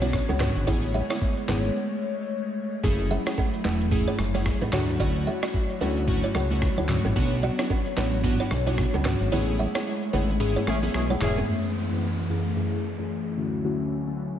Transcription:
Already playing: B1 D3 B3 C#5
0.01 B3 C#4 D4 E4 F#4 C#5, high conga, shaker
0.13 kick, cross-stick, shaker
0.29 C#2 C#4 A4, high conga, shaker
0.40 B3 C#4 D4 F#4 B4, cross-stick, clap, mid tom, low conga, shaker
0.56 G#1, shaker
0.67 A1 G#3 A3 B3 C#4 E4 G#4 C#5, kick, low conga, shaker
0.83 shaker
0.94 G#4 E5, high conga, shaker
1.10 B3 C#4 E4 G#4 C#5, cross-stick, shaker
1.21 kick, shaker
1.37 shaker
1.48 G#1 B3 C#4 D4 E4 G#4 B4, clap, high conga, low conga, shaker
1.64 shaker
2.83 F#1 F#3 A3 C#4 E4 G#4, kick, low conga, shaker
2.99 shaker
3.11 G#4 E5, high conga, shaker
3.26 A3 C#4 E4 G#4 C#5, cross-stick, shaker
3.38 C#4 A4, kick, shaker
3.53 shaker
3.64 E1 A3 C#4 D4 E4 G#4 B4, clap, high conga, shaker
3.81 shaker
3.91 A3 C#4 E4 G#4, kick, mid tom, shaker
4.07 E4 C#5, shaker
4.19 F#1, cross-stick, high conga, shaker
4.34 A3 C#4 E4 G#4 C#5, high conga, shaker
4.46 kick, cross-stick, shaker
4.61 A1 D4 B4, high conga, shaker
4.72 D2 F#3 A3 C#4 E4 F#4 C#5, cross-stick, clap, mid tom, low conga, shaker
4.89 shaker
4.99 A3 C#4 E4 F#4 D5, kick, low conga, shaker
5.16 shaker
5.27 G#4 E5, high conga, shaker
5.42 A3 C#4 E4 F#4 D5, cross-stick, shaker
5.54 kick, shaker
5.69 shaker
5.81 D2 A3 C#4 D4 E4 F#4 B4, high conga, shaker
5.97 shaker
6.08 A3 C#4 E4 F#4, kick, mid tom, shaker
6.24 E4 C#5, shaker
6.35 C#2 C#4 A4, cross-stick, high conga, shaker
6.50 A3 C#4 E4 F#4, high conga, shaker
6.62 kick, cross-stick, shaker
6.78 D2 E4 C#5, high conga, shaker
6.89 A3 C#4 E4 F#4, cross-stick, clap, mid tom, low conga, shaker
7.05 A1 C#4 A4, shaker
7.16 B1 B3 C#4 D4 F#4, kick, low conga, shaker
7.32 shaker
7.43 F#4 D5, high conga, shaker
7.58 B3 C#4 D4 E4 F#4 C#5, cross-stick, shaker
7.70 C#4 A4, kick, shaker
7.86 shaker
7.97 A1 B3 C#4 D4 F#4 B4, clap, high conga, shaker
8.13 shaker
8.24 B3 C#4 D4 F#4, kick, mid tom, shaker
8.40 E4 C#5, shaker
8.51 B1, cross-stick, high conga, shaker
8.66 B3 C#4 D4 E4 F#4 C#5, high conga, shaker
8.78 kick, cross-stick, shaker
8.94 C#2 C#4 A4, high conga, shaker
9.05 B3 C#4 D4 F#4 B4, cross-stick, clap, mid tom, low conga, shaker
9.21 G#1, shaker
9.32 A1 G#3 A3 B3 C#4 E4 G#4 C#5, low conga, shaker
9.48 shaker
9.59 G#4 E5, high conga, shaker
9.74 B3 C#4 E4 G#4 C#5, cross-stick, shaker
9.86 shaker
10.02 shaker
10.13 G#1 B3 C#4 D4 E4 G#4 B4, high conga, low conga, shaker
10.29 shaker
10.40 B3 C#4 E4 G#4, mid tom, shaker
10.56 E4 C#5, shaker
10.67 A1 C#4 E4 G#4 A4, cross-stick, open hi-hat, high conga, shaker
10.83 B3 C#4 E4 G#4, high conga, shaker
10.94 B1 C#4 E4 G#4, cross-stick, shaker
11.10 E4 C#5, high conga, shaker
11.21 E1 B3 C#4 E4 G#4, cross-stick, clap, mid tom, low conga, shaker
11.37 C#4 A4, shaker
11.48 F#2 E3 A3 C#4 E4 G#4, downlifter
11.91 F#2 A3 C#4 E4 G#4
12.29 F#2 A3 C#4 E4 G#4
12.56 F#2 A3 C#4 E4 G#4
12.99 F#2 A3 C#4 E4 G#4
13.37 D2 D3 F#3 A3 C#4 E4 F#4
13.64 D3 A3 C#4 E4 F#4
14.07 D3 A3 C#4 E4 F#4

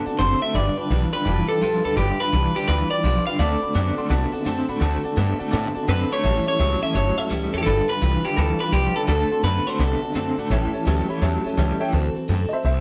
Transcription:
Already playing: D3 B3
0.06 C4 F#4 A4 D5 F#5 A5, muted upright bass stroke
0.18 F#1 D3 A3 C4 F#4 A4 C5 D5 F#5 A5
0.41 A3 C4 F#4 A4 D5 E5 F#5 A5, muted upright bass stroke
0.54 G1 G2 D3 G3 D4 F4 B4 D5 G5 B5
0.77 D4 F4 B4 D5 G5 A5, muted upright bass stroke
0.89 B1 G2 E3 G3 D4 F4 B4 D5 G5 A5
1.12 G2 D3 D4 F4 B4 D5 G5 B5
1.25 F1 G2 E3 G3 D4 F4 B4 D5 G5 A5
1.48 D4 F4 A4 B4 D5 G5 D6, muted upright bass stroke
1.61 B1 G2 F3 G3 D4 F4 B4 D5 G5 A5
1.83 D2 G2 D3 D4 F4 A4 B4 D5 G5 B5
1.96 G1 G2 D3 G3 D4 F4 G4 B4 D5 G5 B5
2.19 D4 F4 B4 D5 B5, muted upright bass stroke
2.32 C2 G2 E3 G3 D4 F4 B4 D5 G5 A5
2.54 G2 D3 D4 F4 G4 B4 D5 G5 D6
2.67 D2 G2 E3 G3 D4 F4 B4 D5 G5 B5
2.90 D4 F4 B4 D5 G5 B5, muted upright bass stroke
3.03 B1 G2 F3 G3 D4 F4 B4 B5
3.26 G2 D3 D4 F4 B4 D5 F5 G5 B5
3.38 D2 D3 A3 C4 F#4 A4 D5 F#5 A5
3.61 C4 F#4 A4 D5 F#5 B5, muted upright bass stroke
3.73 F#2 D3 A3 B3 C4 F#4 A4 D5 F#5 A5
3.96 D3 A3 C4 F#4 A4 D5 F#5 C6, muted upright bass stroke
4.09 C2 D3 A3 B3 C4 F#4 A4 D5 F#5 A5
4.32 C4 F#4 A4 D5 F#5 A5, muted upright bass stroke
4.45 F#2 D3 A3 C4 F#4 A4 D5 F#5 A5
4.68 A2 D3 A3 C4 F#4 A4 D5 F#5 B5
4.80 D2 D3 A3 C4 F#4 A4 D5 F#5 A5
5.03 C4 F#4 A4 D5 F#5 A5, muted upright bass stroke
5.16 G2 D3 A3 B3 C4 F#4 A4 D5 F#5 A5
5.39 D3 A3 C4 F#4 A4 D5 F#5 A5, muted upright bass stroke
5.51 A2 D3 A3 B3 C4 F#4 A4 D5 F#5 A5
5.75 C4 F#4 A4 D5 F#5 A5, muted upright bass stroke
5.87 F#2 D3 A3 C4 F#4 A4 B4 D5 F#5
6.10 D3 A3 C4 F#4 A4 C#5 D5 F#5 A5, muted upright bass stroke
6.22 A1 A2 E3 G3 C#4 E4 A4 C#5 E5 A5
6.45 G3 C#4 E4 A4 C#5 E5 A5
6.58 C#2 A2 E3 F#3 G3 C#4 E4 A4 C#5 E5 A5
6.81 E3 G3 C#4 E4 A4 C#5 E5 A5
6.93 G1 A2 F#3 G3 C#4 E4 A4 C#5 E5 A5
7.17 G3 C#4 E4 A4 C#5 E5 A5, muted upright bass stroke
7.29 C#2 A2 E3 G3 C#4 E4 A4 C#5 E5 A5
7.52 E2 E3 G3 C#4 E4 A4 C#5 E5 A5
7.58 G4
7.63 G1 G2 D3 G3 D4 F4 A4 B4 D5 G5 B5
7.87 D4 F4 B4 D5 G5 B5, muted upright bass stroke
8.00 C2 G2 E3 G3 D4 F4 B4 D5 G5 B5
8.24 G2 D3 D4 F4 G4 B4 D5 G5 B5, muted upright bass stroke
8.36 D2 G2 E3 G3 D4 F4 A4 B4 D5 G5 B5
8.60 D4 F4 B4 D5 G5 B5, muted upright bass stroke
8.72 C2 G2 F3 G3 D4 F4 G4 B4 D5 G5 B5
8.94 G2 D3 D4 F4 A4 B4 D5 G5 B5, muted upright bass stroke
9.07 D2 D3 A3 C4 F#4 A4 D5 F#5 A5
9.30 C4 F#4 A4 D5 F#5 C6, muted upright bass stroke
9.43 F#2 D3 A3 B3 C4 F#4 A4 B4 D5 F#5 A5
9.66 D3 A3 C4 F#4 A4 C5 D5 F#5 A5, muted upright bass stroke
9.78 C2 D3 A3 B3 C4 F#4 A4 D5 F#5 A5
10.01 C4 F#4 A4 D5 F#5 A5, muted upright bass stroke
10.13 F#2 D3 A3 C4 F#4 A4 D5 F#5 A5
10.37 A2 A3 C4 F#4 A4 D5 F#5 A5
10.50 A1 A2 E3 G3 C#4 G4 A4 C#5 E5 A5
10.73 G3 C#4 G4 A4 C#5 E5 A5, muted upright bass stroke
10.85 D2 A2 E3 F#3 G3 C#4 G4 A4 C#5 E5 A5
11.08 A2 E3 G3 C#4 G4 A4 C#5 E5 B5, muted upright bass stroke
11.21 E2 A2 F#3 G3 C#4 G4 A4 C#5 E5 A5
11.44 G3 C#4 G4 A4 C#5 E5 A5, muted upright bass stroke
11.57 C#2 A2 E3 G3 C#4 G4 A4 C#5 E5 A5
11.79 A2 E3 G3 C#4 G4 A4 C#5 E5 G5
11.92 D2 D3 E3 F#3 A3 C4 F#4 A4
12.14 C4 F#4 A4, muted upright bass stroke
12.28 F#2 D3 A3 C4 F#4 A4
12.49 F#4 A4 D#5, muted upright bass stroke
12.53 C4 C5 E5
12.63 C2 A3 C4 F#4 A4 C5 E5

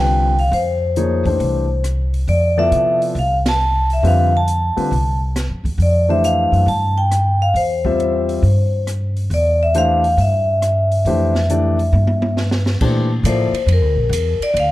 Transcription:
Already playing: C2 D3 G3 C4 F4 B4 G5
0.38 F5, open hi-hat
0.51 F2 C5, open hi-hat
0.96 F3 A#3 D#4 G#4 C#5, closed hi-hat
1.25 E3 A3 D4 G4 C5, kick, open hi-hat
1.40 C2, open hi-hat
1.84 cross-stick, closed hi-hat
2.14 open hi-hat
2.28 F2 D5, open hi-hat
2.57 F3 B3 E4 A4 D5 E5
2.71 C3, closed hi-hat
3.02 open hi-hat
3.15 C2 F5, open hi-hat
3.46 A5, snare, ride
3.90 E5, open hi-hat
4.03 F2 D3 G3 C4 F4 B4, open hi-hat
4.07 F5
4.37 A5
4.48 closed hi-hat
4.77 D3 G3 C4 F4 B4, muted upright bass stroke, open hi-hat
4.91 C2, open hi-hat
5.36 cross-stick, snare, closed hi-hat
5.50 F2
5.64 E2, kick, open hi-hat
5.78 F2, open hi-hat
5.82 D5
6.09 E3 A3 D4 G4 C5 E5
6.24 F5, closed hi-hat
6.52 F#2, open hi-hat
6.66 G2 A5, open hi-hat
6.98 G5
7.11 cross-stick, closed hi-hat
7.42 F5
7.54 E2 C5, open hi-hat
7.85 G3 C4 F4 C5 E5, kick
8.00 closed hi-hat
8.29 open hi-hat
8.42 G2, open hi-hat
8.87 cross-stick, closed hi-hat
9.17 open hi-hat
9.30 E2 D5, open hi-hat
9.63 E5
9.74 E3 A3 D4 G4 C5 F5, closed hi-hat
10.04 open hi-hat
10.17 G2 E5, open hi-hat
10.62 cross-stick, closed hi-hat
10.92 open hi-hat
11.05 F2 E3 A3 D4 G4 C5, open hi-hat
11.35 snare
11.50 E3 A3 D4 G4 D5, closed hi-hat
11.79 open hi-hat
11.93 G2, high tom
12.07 high tom
12.22 high tom
12.37 snare
12.51 snare
12.66 snare
12.81 A#2 E3 A3 D4 G4 C5, kick, crash
13.23 A2 F3 A#3 E4 A4 D5, hi-hat pedal, ride
13.28 C5
13.53 muted upright bass stroke, ride
13.66 F2, ride
13.73 A#4
13.81 D2
13.95 A#1
14.09 E2, hi-hat pedal, ride
14.40 D5, muted upright bass stroke, ride
14.54 D2, ride
14.60 F5

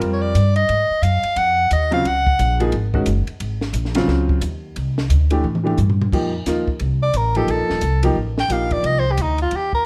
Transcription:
Already playing: G3 C4 F4 A#4
0.01 F2, ride
0.13 C#5
0.21 D5
0.35 G2, hi-hat pedal, ride
0.56 D#5, ride
0.69 G#2, ride
0.90 muted upright bass stroke
1.02 F#2 F5, hi-hat pedal, ride
1.23 muted upright bass stroke, ride
1.36 F2 F#5, ride
1.71 D#2 D#5, hi-hat pedal, ride
1.91 C#3 F#3 C4 F4 F5, ride
2.05 C#2 F#5, ride
2.27 kick
2.39 A#1, hi-hat pedal, ride
2.60 F3 A#3 D#4 G#4, ride
2.72 G#1, ride
2.94 D#3 G#3 C#4 F#4, kick
3.06 F#1, hi-hat pedal, ride
3.27 muted upright bass stroke, ride
3.40 G#1, ride
3.61 snare
3.73 A#1, hi-hat pedal, ride
3.85 snare
3.95 C#3 F#3 C4 F4, snare, ride
4.07 C#2, snare
4.29 kick
4.41 D#2, hi-hat pedal, ride
4.76 C2, ride
4.98 snare
5.09 D2, hi-hat pedal, ride
5.30 E3 A3 D4 G4, ride
5.44 A2, mid tom
5.55 mid tom
5.64 E3 A3 D4 G4, mid tom
5.78 G2, floor tom, hi-hat pedal
5.90 floor tom
6.02 floor tom
6.12 F2 F3 A#3 D#4 G4, kick, crash
6.46 D#2 F3 A#3 D#4 F4, snare, hi-hat pedal, ride
6.68 kick
6.80 C2, ride
7.02 D5
7.14 A1 A#4, hi-hat pedal, ride
7.35 F3 A#3 D#4 G4 A4, ride
7.47 A#1 A4, ride
7.59 F1
7.70 D#1, snare
7.81 C2, hi-hat pedal, ride
8.03 F3 A#3 D#4 G4, ride
8.15 A1
8.38 G5, snare
8.49 A#1 F3 A#3 D#4 G4 F5, hi-hat pedal, ride
8.71 D5, kick, ride
8.83 C2 D#5, ride
8.99 C5
9.12 G4
9.17 D2, hi-hat pedal, ride
9.22 D#4
9.38 F4, ride
9.51 D#2, ride
9.56 G4
9.73 A#4, kick

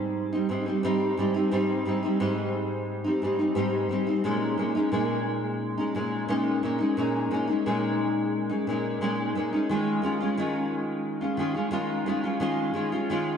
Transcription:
Already playing: G#2 G3 C4 D#4
0.33 G3 C4 D#4
0.49 G#2 G3 C4 D#4
0.66 G3 C4 D#4
0.83 G#2 G3 C4 D#4
1.17 G#2 G3 C4 D#4
1.34 G3 C4 D#4
1.51 G#2 G3 C4 D#4
1.85 G#2 G3 C4 D#4
2.03 G3 C4 D#4
2.20 G#2 G3 C4 D#4
3.04 G3 C4 D#4
3.22 G#2 G3 C4 D#4
3.39 G3 C4 D#4
3.55 G#2 G3 C4 D#4
3.89 G#2 G3 C4 D#4
4.07 G3 C4 D#4
4.24 A#2 G#3 C#4 D#4
4.58 A#2 G#3 C#4 D#4
4.75 G#3 C#4 D#4
4.92 A#2 G#3 C#4 D#4
5.78 G#3 C#4 D#4
5.95 A#2 G#3 C#4 D#4
6.28 A#2 G#3 C#4 D#4
6.63 A#2 G#3 C#4 D#4
6.78 G#3 C#4 D#4
6.97 A#2 G#3 C#4 D#4
7.31 A#2 G#3 C#4 D#4
7.47 G#3 C#4 D#4
7.66 A#2 G#3 C#4 D#4
8.50 G#3 C#4 D#4
8.67 A#2 G#3 C#4 D#4
9.01 A#2 G#3 C#4 D#4
9.35 A#2 G#3 C#4 D#4
9.53 G#3 C#4 D#4
9.69 D#3 G#3 C#4 F4
10.02 D#3 G#3 C#4 F4
10.20 G#3 C#4 F4
10.37 D#3 G#3 C#4 F4
11.21 G#3 C#4 F4
11.37 D#3 G#3 C#4 F4
11.54 G#3 C#4 F4
11.71 D#3 G#3 C#4 F4
12.06 D#3 G#3 C#4 F4
12.24 G#3 C#4 F4
12.40 D#3 G#3 C#4 F4
12.74 D#3 G#3 C#4 F4
12.92 G#3 C#4 F4
13.10 D#3 G#3 C#4 F4

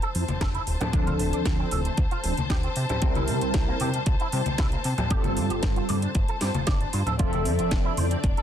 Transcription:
Already playing: C5 A5
0.02 A4, closed hi-hat
0.15 F2 F3 C4 E4 C5, open hi-hat
0.28 F1, closed hi-hat, high conga
0.41 F1 A4, kick, snare, closed hi-hat
0.54 E4, closed hi-hat
0.67 D1, open hi-hat
0.80 A3, closed hi-hat, low conga
0.92 D2 F3 C4 D4 A4, kick, closed hi-hat
1.07 F4, closed hi-hat, high conga
1.19 D1 A3, open hi-hat
1.33 D2 D4, closed hi-hat
1.45 D2, kick, snare, closed hi-hat
1.59 C4
1.71 D1 F3 C4 D4 A4, open hi-hat, high conga
1.85 A3, closed hi-hat
1.97 D2, kick, closed hi-hat
2.11 F4, closed hi-hat
2.24 D1 F3 C4 D4 C5, open hi-hat
2.37 D2, closed hi-hat, high conga
2.50 D2 G4, kick, snare, closed hi-hat
2.63 C4, closed hi-hat
2.76 C3, open hi-hat
2.89 G3, closed hi-hat, low conga
3.01 C2 G3 C4 E4 A#4, kick, closed hi-hat
3.15 E4, closed hi-hat, high conga
3.28 C3 G3, open hi-hat
3.41 C2 C4, closed hi-hat
3.54 C2, kick, snare, closed hi-hat
3.68 A#3
3.80 C3 G3 C4 E4 G4 A#4, open hi-hat, high conga
3.94 G3, closed hi-hat
4.06 C2, kick, closed hi-hat
4.20 E4, closed hi-hat
4.32 C3 G3 C4 E4 C5, open hi-hat
4.46 C2, closed hi-hat, high conga
4.58 C2 E4, kick, snare, closed hi-hat
4.72 A#3, closed hi-hat
4.84 C3, open hi-hat
4.98 G3, closed hi-hat, low conga
5.10 G1 G3 C4 F4 G4 A4, kick, closed hi-hat
5.24 A4, closed hi-hat, high conga
5.37 G2 D4, open hi-hat
5.50 G1 G4, closed hi-hat
5.63 G1, kick, snare, closed hi-hat
5.76 F4, closed hi-hat
5.89 G2 G3 C4 F4 A4 D5, open hi-hat, high conga
6.02 D4, closed hi-hat
6.15 G1, kick, closed hi-hat
6.28 A4, closed hi-hat
6.41 G2 G3 C4 F4 G4 C5, snare, open hi-hat
6.54 G1 F4, closed hi-hat, high conga
6.67 G1 D5, kick, snare, closed hi-hat
6.81 D4, closed hi-hat
6.93 G2 F4, open hi-hat
7.06 A4, closed hi-hat, low conga
7.18 F1 F3 C4 D4 F4 A4 D5 E5, kick, closed hi-hat
7.33 A4, closed hi-hat, high conga
7.45 F2 C4, open hi-hat
7.59 F1 F4, closed hi-hat
7.71 F1, kick, snare, closed hi-hat
7.85 E4
7.97 F2 F3 C4 E4 A4 C5, open hi-hat, high conga
8.11 C4, closed hi-hat
8.24 F1, kick, closed hi-hat
8.37 A4, closed hi-hat

